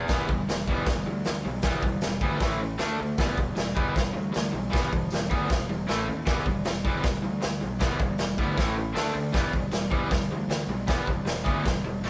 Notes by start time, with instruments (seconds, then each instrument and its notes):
0.08 fingered electric bass E1, overdriven electric guitar E3 G3 B3, kick, snare, open hi-hat
0.28 fingered electric bass E1, overdriven electric guitar E3 G3, kick
0.47 fingered electric bass E1, overdriven electric guitar E3 G3, snare, open hi-hat, tambourine
0.68 overdriven electric guitar E3 G3 B3, kick
0.86 fingered electric bass E1, overdriven electric guitar E3 G3, kick, snare, open hi-hat
1.06 fingered electric bass D2, overdriven electric guitar E3 G3
1.25 fingered electric bass D2, overdriven electric guitar E3 G3, snare, open hi-hat, tambourine
1.44 fingered electric bass B1, overdriven electric guitar E3 G3
1.62 fingered electric bass E1, overdriven electric guitar E3 G3 B3, kick, snare, open hi-hat
1.82 fingered electric bass E1, overdriven electric guitar E3 G3, kick
2.01 overdriven electric guitar E3 G3, snare, open hi-hat, tambourine
2.06 fingered electric bass E1
2.21 fingered electric bass D2, overdriven electric guitar E3 G3 B3, kick
2.40 fingered electric bass A1, overdriven electric guitar A2 E3 A3, kick, snare, open hi-hat
2.60 overdriven electric guitar A2 E3
2.78 overdriven electric guitar D3 A3 D4, snare, open hi-hat, tambourine
2.82 fingered electric bass D2
2.99 fingered electric bass D2, overdriven electric guitar D3 A3
3.18 fingered electric bass E1, overdriven electric guitar E3 G3 B3, kick, snare, open hi-hat
3.36 fingered electric bass E1, overdriven electric guitar E3 G3, kick
3.55 fingered electric bass E1, overdriven electric guitar E3 G3, snare, open hi-hat, tambourine
3.75 overdriven electric guitar E3 G3 B3, kick
3.95 fingered electric bass E1, overdriven electric guitar E3 G3, kick, snare, open hi-hat
4.13 fingered electric bass D2, overdriven electric guitar E3 G3
4.33 fingered electric bass D2, overdriven electric guitar E3 G3, snare, open hi-hat, tambourine
4.52 fingered electric bass B1, overdriven electric guitar E3 G3
4.71 fingered electric bass E1, overdriven electric guitar E3 G3 B3, kick, snare, open hi-hat
4.91 fingered electric bass E1, overdriven electric guitar E3 G3, kick
5.11 fingered electric bass E1, overdriven electric guitar E3 G3, snare, open hi-hat, tambourine
5.29 fingered electric bass D2, overdriven electric guitar E3 G3 B3, kick
5.49 fingered electric bass E1, overdriven electric guitar E3 G3, kick, snare, open hi-hat
5.69 overdriven electric guitar E3 G3
5.87 fingered electric bass A1, overdriven electric guitar A2 E3 A3, snare, open hi-hat, tambourine
6.07 fingered electric bass D#2, overdriven electric guitar A2 E3
6.26 fingered electric bass E1, overdriven electric guitar E3 G3 B3, kick, snare, open hi-hat
6.45 fingered electric bass E1, overdriven electric guitar E3 G3, kick
6.65 fingered electric bass E1, overdriven electric guitar E3 G3, snare, open hi-hat, tambourine
6.85 overdriven electric guitar E3 G3 B3, kick
7.03 fingered electric bass E1, overdriven electric guitar E3 G3, kick, snare, open hi-hat
7.23 fingered electric bass D2, overdriven electric guitar E3 G3
7.41 fingered electric bass D2, overdriven electric guitar E3 G3, snare, open hi-hat, tambourine
7.61 fingered electric bass B1, overdriven electric guitar E3 G3
7.80 fingered electric bass E1, overdriven electric guitar E3 G3 B3, kick, snare, open hi-hat
7.99 fingered electric bass E1, overdriven electric guitar E3 G3, kick
8.18 fingered electric bass E1, overdriven electric guitar E3 G3, snare, open hi-hat, tambourine
8.37 fingered electric bass D2, overdriven electric guitar E3 G3 B3, kick
8.57 fingered electric bass A1, overdriven electric guitar A2 E3 A3, kick, snare, open hi-hat
8.76 overdriven electric guitar A2 E3
8.94 fingered electric bass D2, overdriven electric guitar D3 A3 D4, snare, open hi-hat, tambourine
9.14 fingered electric bass D2, overdriven electric guitar D3 A3
9.33 fingered electric bass E1, overdriven electric guitar E3 G3 B3, kick, snare, open hi-hat
9.53 fingered electric bass E1, overdriven electric guitar E3 G3, kick
9.72 fingered electric bass E1, overdriven electric guitar E3 G3, snare, open hi-hat, tambourine
9.91 overdriven electric guitar E3 G3 B3, kick
10.11 fingered electric bass E1, overdriven electric guitar E3 G3, kick, snare, open hi-hat
10.28 fingered electric bass D2, overdriven electric guitar E3 G3
10.48 fingered electric bass D2, overdriven electric guitar E3 G3, snare, open hi-hat, tambourine
10.67 fingered electric bass B1, overdriven electric guitar E3 G3
10.87 fingered electric bass E1, overdriven electric guitar E3 G3 B3, kick, snare, open hi-hat
11.07 fingered electric bass E1, overdriven electric guitar E3 G3, kick
11.24 fingered electric bass E1, overdriven electric guitar E3 G3, snare, open hi-hat, tambourine
11.44 fingered electric bass D2, overdriven electric guitar E3 G3 B3, kick
11.64 fingered electric bass E1, overdriven electric guitar E3 G3, kick, snare, open hi-hat
11.85 overdriven electric guitar E3 G3
12.01 fingered electric bass A1, overdriven electric guitar A2 E3 A3, tambourine
12.06 snare